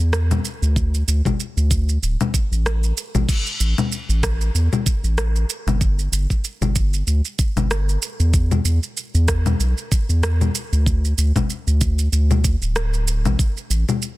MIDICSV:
0, 0, Header, 1, 3, 480
1, 0, Start_track
1, 0, Tempo, 631579
1, 577, Time_signature, 4, 2, 24, 8
1, 10771, End_track
2, 0, Start_track
2, 0, Title_t, "Analog synth bass"
2, 0, Program_c, 0, 38
2, 0, Note_on_c, 0, 40, 82
2, 304, Note_off_c, 0, 40, 0
2, 473, Note_on_c, 0, 38, 92
2, 784, Note_off_c, 0, 38, 0
2, 819, Note_on_c, 0, 38, 94
2, 925, Note_off_c, 0, 38, 0
2, 1193, Note_on_c, 0, 38, 93
2, 1504, Note_off_c, 0, 38, 0
2, 1540, Note_on_c, 0, 26, 90
2, 1646, Note_off_c, 0, 26, 0
2, 1912, Note_on_c, 0, 33, 85
2, 2224, Note_off_c, 0, 33, 0
2, 2392, Note_on_c, 0, 33, 81
2, 2476, Note_off_c, 0, 33, 0
2, 2738, Note_on_c, 0, 33, 102
2, 2845, Note_off_c, 0, 33, 0
2, 3109, Note_on_c, 0, 33, 92
2, 3422, Note_off_c, 0, 33, 0
2, 3455, Note_on_c, 0, 40, 83
2, 3563, Note_off_c, 0, 40, 0
2, 3828, Note_on_c, 0, 33, 80
2, 4142, Note_off_c, 0, 33, 0
2, 4306, Note_on_c, 0, 31, 92
2, 4621, Note_off_c, 0, 31, 0
2, 4652, Note_on_c, 0, 31, 105
2, 4761, Note_off_c, 0, 31, 0
2, 5026, Note_on_c, 0, 31, 93
2, 5341, Note_off_c, 0, 31, 0
2, 5373, Note_on_c, 0, 38, 85
2, 5482, Note_off_c, 0, 38, 0
2, 5747, Note_on_c, 0, 31, 83
2, 6062, Note_off_c, 0, 31, 0
2, 6229, Note_on_c, 0, 40, 97
2, 6543, Note_off_c, 0, 40, 0
2, 6573, Note_on_c, 0, 40, 104
2, 6682, Note_off_c, 0, 40, 0
2, 6950, Note_on_c, 0, 40, 90
2, 7263, Note_off_c, 0, 40, 0
2, 7294, Note_on_c, 0, 35, 83
2, 7403, Note_off_c, 0, 35, 0
2, 7670, Note_on_c, 0, 40, 83
2, 7983, Note_off_c, 0, 40, 0
2, 8151, Note_on_c, 0, 38, 97
2, 8463, Note_off_c, 0, 38, 0
2, 8496, Note_on_c, 0, 38, 99
2, 8604, Note_off_c, 0, 38, 0
2, 8871, Note_on_c, 0, 38, 90
2, 9183, Note_off_c, 0, 38, 0
2, 9214, Note_on_c, 0, 38, 99
2, 9547, Note_off_c, 0, 38, 0
2, 9587, Note_on_c, 0, 26, 91
2, 10067, Note_on_c, 0, 33, 94
2, 10079, Note_off_c, 0, 26, 0
2, 10154, Note_off_c, 0, 33, 0
2, 10414, Note_on_c, 0, 33, 101
2, 10523, Note_off_c, 0, 33, 0
2, 10771, End_track
3, 0, Start_track
3, 0, Title_t, "Drums"
3, 99, Note_on_c, 9, 37, 71
3, 99, Note_on_c, 9, 82, 42
3, 175, Note_off_c, 9, 37, 0
3, 175, Note_off_c, 9, 82, 0
3, 237, Note_on_c, 9, 64, 83
3, 237, Note_on_c, 9, 82, 30
3, 313, Note_off_c, 9, 64, 0
3, 313, Note_off_c, 9, 82, 0
3, 341, Note_on_c, 9, 82, 66
3, 417, Note_off_c, 9, 82, 0
3, 477, Note_on_c, 9, 82, 30
3, 553, Note_off_c, 9, 82, 0
3, 579, Note_on_c, 9, 36, 113
3, 581, Note_on_c, 9, 82, 41
3, 655, Note_off_c, 9, 36, 0
3, 657, Note_off_c, 9, 82, 0
3, 717, Note_on_c, 9, 82, 27
3, 793, Note_off_c, 9, 82, 0
3, 823, Note_on_c, 9, 82, 74
3, 899, Note_off_c, 9, 82, 0
3, 952, Note_on_c, 9, 36, 57
3, 957, Note_on_c, 9, 64, 75
3, 958, Note_on_c, 9, 82, 30
3, 1028, Note_off_c, 9, 36, 0
3, 1033, Note_off_c, 9, 64, 0
3, 1034, Note_off_c, 9, 82, 0
3, 1064, Note_on_c, 9, 82, 43
3, 1140, Note_off_c, 9, 82, 0
3, 1196, Note_on_c, 9, 82, 28
3, 1272, Note_off_c, 9, 82, 0
3, 1298, Note_on_c, 9, 36, 99
3, 1300, Note_on_c, 9, 82, 69
3, 1374, Note_off_c, 9, 36, 0
3, 1376, Note_off_c, 9, 82, 0
3, 1436, Note_on_c, 9, 82, 33
3, 1512, Note_off_c, 9, 82, 0
3, 1543, Note_on_c, 9, 82, 43
3, 1619, Note_off_c, 9, 82, 0
3, 1677, Note_on_c, 9, 64, 76
3, 1677, Note_on_c, 9, 82, 30
3, 1753, Note_off_c, 9, 64, 0
3, 1753, Note_off_c, 9, 82, 0
3, 1778, Note_on_c, 9, 36, 93
3, 1781, Note_on_c, 9, 82, 71
3, 1854, Note_off_c, 9, 36, 0
3, 1857, Note_off_c, 9, 82, 0
3, 1918, Note_on_c, 9, 82, 29
3, 1994, Note_off_c, 9, 82, 0
3, 2022, Note_on_c, 9, 37, 73
3, 2022, Note_on_c, 9, 82, 38
3, 2098, Note_off_c, 9, 37, 0
3, 2098, Note_off_c, 9, 82, 0
3, 2154, Note_on_c, 9, 82, 29
3, 2230, Note_off_c, 9, 82, 0
3, 2260, Note_on_c, 9, 82, 73
3, 2336, Note_off_c, 9, 82, 0
3, 2393, Note_on_c, 9, 64, 82
3, 2393, Note_on_c, 9, 82, 33
3, 2469, Note_off_c, 9, 64, 0
3, 2469, Note_off_c, 9, 82, 0
3, 2497, Note_on_c, 9, 36, 110
3, 2500, Note_on_c, 9, 49, 98
3, 2500, Note_on_c, 9, 82, 44
3, 2573, Note_off_c, 9, 36, 0
3, 2576, Note_off_c, 9, 49, 0
3, 2576, Note_off_c, 9, 82, 0
3, 2632, Note_on_c, 9, 82, 30
3, 2708, Note_off_c, 9, 82, 0
3, 2740, Note_on_c, 9, 82, 79
3, 2816, Note_off_c, 9, 82, 0
3, 2875, Note_on_c, 9, 64, 79
3, 2875, Note_on_c, 9, 82, 30
3, 2951, Note_off_c, 9, 64, 0
3, 2951, Note_off_c, 9, 82, 0
3, 2979, Note_on_c, 9, 82, 44
3, 3055, Note_off_c, 9, 82, 0
3, 3114, Note_on_c, 9, 82, 33
3, 3190, Note_off_c, 9, 82, 0
3, 3216, Note_on_c, 9, 36, 106
3, 3219, Note_on_c, 9, 37, 76
3, 3219, Note_on_c, 9, 82, 77
3, 3292, Note_off_c, 9, 36, 0
3, 3295, Note_off_c, 9, 37, 0
3, 3295, Note_off_c, 9, 82, 0
3, 3352, Note_on_c, 9, 82, 33
3, 3428, Note_off_c, 9, 82, 0
3, 3460, Note_on_c, 9, 82, 45
3, 3536, Note_off_c, 9, 82, 0
3, 3592, Note_on_c, 9, 64, 78
3, 3592, Note_on_c, 9, 82, 31
3, 3668, Note_off_c, 9, 64, 0
3, 3668, Note_off_c, 9, 82, 0
3, 3696, Note_on_c, 9, 36, 94
3, 3698, Note_on_c, 9, 82, 75
3, 3772, Note_off_c, 9, 36, 0
3, 3774, Note_off_c, 9, 82, 0
3, 3831, Note_on_c, 9, 82, 31
3, 3907, Note_off_c, 9, 82, 0
3, 3936, Note_on_c, 9, 37, 80
3, 3936, Note_on_c, 9, 82, 43
3, 4012, Note_off_c, 9, 37, 0
3, 4012, Note_off_c, 9, 82, 0
3, 4071, Note_on_c, 9, 82, 31
3, 4147, Note_off_c, 9, 82, 0
3, 4178, Note_on_c, 9, 82, 78
3, 4254, Note_off_c, 9, 82, 0
3, 4314, Note_on_c, 9, 64, 84
3, 4314, Note_on_c, 9, 82, 34
3, 4390, Note_off_c, 9, 64, 0
3, 4390, Note_off_c, 9, 82, 0
3, 4416, Note_on_c, 9, 36, 125
3, 4417, Note_on_c, 9, 82, 45
3, 4492, Note_off_c, 9, 36, 0
3, 4493, Note_off_c, 9, 82, 0
3, 4551, Note_on_c, 9, 82, 30
3, 4627, Note_off_c, 9, 82, 0
3, 4659, Note_on_c, 9, 82, 88
3, 4735, Note_off_c, 9, 82, 0
3, 4790, Note_on_c, 9, 36, 60
3, 4791, Note_on_c, 9, 82, 32
3, 4866, Note_off_c, 9, 36, 0
3, 4867, Note_off_c, 9, 82, 0
3, 4897, Note_on_c, 9, 82, 49
3, 4973, Note_off_c, 9, 82, 0
3, 5031, Note_on_c, 9, 64, 76
3, 5031, Note_on_c, 9, 82, 32
3, 5107, Note_off_c, 9, 64, 0
3, 5107, Note_off_c, 9, 82, 0
3, 5135, Note_on_c, 9, 36, 109
3, 5135, Note_on_c, 9, 82, 84
3, 5211, Note_off_c, 9, 36, 0
3, 5211, Note_off_c, 9, 82, 0
3, 5271, Note_on_c, 9, 82, 35
3, 5347, Note_off_c, 9, 82, 0
3, 5376, Note_on_c, 9, 82, 47
3, 5452, Note_off_c, 9, 82, 0
3, 5510, Note_on_c, 9, 82, 33
3, 5586, Note_off_c, 9, 82, 0
3, 5615, Note_on_c, 9, 36, 103
3, 5616, Note_on_c, 9, 82, 82
3, 5691, Note_off_c, 9, 36, 0
3, 5692, Note_off_c, 9, 82, 0
3, 5752, Note_on_c, 9, 64, 68
3, 5752, Note_on_c, 9, 82, 34
3, 5828, Note_off_c, 9, 64, 0
3, 5828, Note_off_c, 9, 82, 0
3, 5859, Note_on_c, 9, 37, 81
3, 5859, Note_on_c, 9, 82, 47
3, 5935, Note_off_c, 9, 37, 0
3, 5935, Note_off_c, 9, 82, 0
3, 5995, Note_on_c, 9, 82, 34
3, 6071, Note_off_c, 9, 82, 0
3, 6097, Note_on_c, 9, 82, 77
3, 6173, Note_off_c, 9, 82, 0
3, 6231, Note_on_c, 9, 82, 36
3, 6307, Note_off_c, 9, 82, 0
3, 6336, Note_on_c, 9, 36, 127
3, 6336, Note_on_c, 9, 82, 46
3, 6412, Note_off_c, 9, 36, 0
3, 6412, Note_off_c, 9, 82, 0
3, 6470, Note_on_c, 9, 64, 72
3, 6470, Note_on_c, 9, 82, 29
3, 6546, Note_off_c, 9, 64, 0
3, 6546, Note_off_c, 9, 82, 0
3, 6575, Note_on_c, 9, 82, 85
3, 6651, Note_off_c, 9, 82, 0
3, 6711, Note_on_c, 9, 82, 32
3, 6787, Note_off_c, 9, 82, 0
3, 6818, Note_on_c, 9, 82, 48
3, 6894, Note_off_c, 9, 82, 0
3, 6951, Note_on_c, 9, 82, 33
3, 7027, Note_off_c, 9, 82, 0
3, 7055, Note_on_c, 9, 37, 82
3, 7055, Note_on_c, 9, 82, 83
3, 7056, Note_on_c, 9, 36, 111
3, 7131, Note_off_c, 9, 37, 0
3, 7131, Note_off_c, 9, 82, 0
3, 7132, Note_off_c, 9, 36, 0
3, 7189, Note_on_c, 9, 64, 80
3, 7189, Note_on_c, 9, 82, 35
3, 7265, Note_off_c, 9, 64, 0
3, 7265, Note_off_c, 9, 82, 0
3, 7298, Note_on_c, 9, 82, 48
3, 7374, Note_off_c, 9, 82, 0
3, 7429, Note_on_c, 9, 82, 29
3, 7505, Note_off_c, 9, 82, 0
3, 7537, Note_on_c, 9, 36, 108
3, 7539, Note_on_c, 9, 82, 81
3, 7613, Note_off_c, 9, 36, 0
3, 7615, Note_off_c, 9, 82, 0
3, 7672, Note_on_c, 9, 82, 31
3, 7748, Note_off_c, 9, 82, 0
3, 7778, Note_on_c, 9, 37, 83
3, 7778, Note_on_c, 9, 82, 46
3, 7854, Note_off_c, 9, 37, 0
3, 7854, Note_off_c, 9, 82, 0
3, 7913, Note_on_c, 9, 64, 76
3, 7913, Note_on_c, 9, 82, 33
3, 7989, Note_off_c, 9, 64, 0
3, 7989, Note_off_c, 9, 82, 0
3, 8018, Note_on_c, 9, 82, 86
3, 8094, Note_off_c, 9, 82, 0
3, 8153, Note_on_c, 9, 82, 34
3, 8229, Note_off_c, 9, 82, 0
3, 8257, Note_on_c, 9, 36, 125
3, 8260, Note_on_c, 9, 82, 44
3, 8333, Note_off_c, 9, 36, 0
3, 8336, Note_off_c, 9, 82, 0
3, 8395, Note_on_c, 9, 82, 32
3, 8471, Note_off_c, 9, 82, 0
3, 8499, Note_on_c, 9, 82, 84
3, 8575, Note_off_c, 9, 82, 0
3, 8631, Note_on_c, 9, 36, 63
3, 8634, Note_on_c, 9, 64, 74
3, 8634, Note_on_c, 9, 82, 33
3, 8707, Note_off_c, 9, 36, 0
3, 8710, Note_off_c, 9, 64, 0
3, 8710, Note_off_c, 9, 82, 0
3, 8739, Note_on_c, 9, 82, 48
3, 8815, Note_off_c, 9, 82, 0
3, 8872, Note_on_c, 9, 82, 34
3, 8948, Note_off_c, 9, 82, 0
3, 8976, Note_on_c, 9, 82, 76
3, 8978, Note_on_c, 9, 36, 106
3, 9052, Note_off_c, 9, 82, 0
3, 9054, Note_off_c, 9, 36, 0
3, 9110, Note_on_c, 9, 82, 36
3, 9186, Note_off_c, 9, 82, 0
3, 9218, Note_on_c, 9, 82, 48
3, 9294, Note_off_c, 9, 82, 0
3, 9353, Note_on_c, 9, 64, 70
3, 9353, Note_on_c, 9, 82, 30
3, 9429, Note_off_c, 9, 64, 0
3, 9429, Note_off_c, 9, 82, 0
3, 9457, Note_on_c, 9, 36, 105
3, 9457, Note_on_c, 9, 82, 75
3, 9533, Note_off_c, 9, 36, 0
3, 9533, Note_off_c, 9, 82, 0
3, 9592, Note_on_c, 9, 82, 31
3, 9668, Note_off_c, 9, 82, 0
3, 9697, Note_on_c, 9, 37, 76
3, 9697, Note_on_c, 9, 82, 45
3, 9773, Note_off_c, 9, 37, 0
3, 9773, Note_off_c, 9, 82, 0
3, 9831, Note_on_c, 9, 82, 33
3, 9907, Note_off_c, 9, 82, 0
3, 9939, Note_on_c, 9, 82, 81
3, 10015, Note_off_c, 9, 82, 0
3, 10074, Note_on_c, 9, 64, 75
3, 10074, Note_on_c, 9, 82, 35
3, 10150, Note_off_c, 9, 64, 0
3, 10150, Note_off_c, 9, 82, 0
3, 10178, Note_on_c, 9, 36, 121
3, 10180, Note_on_c, 9, 82, 44
3, 10254, Note_off_c, 9, 36, 0
3, 10256, Note_off_c, 9, 82, 0
3, 10314, Note_on_c, 9, 82, 29
3, 10390, Note_off_c, 9, 82, 0
3, 10419, Note_on_c, 9, 82, 80
3, 10495, Note_off_c, 9, 82, 0
3, 10554, Note_on_c, 9, 64, 68
3, 10554, Note_on_c, 9, 82, 32
3, 10630, Note_off_c, 9, 64, 0
3, 10630, Note_off_c, 9, 82, 0
3, 10657, Note_on_c, 9, 82, 46
3, 10733, Note_off_c, 9, 82, 0
3, 10771, End_track
0, 0, End_of_file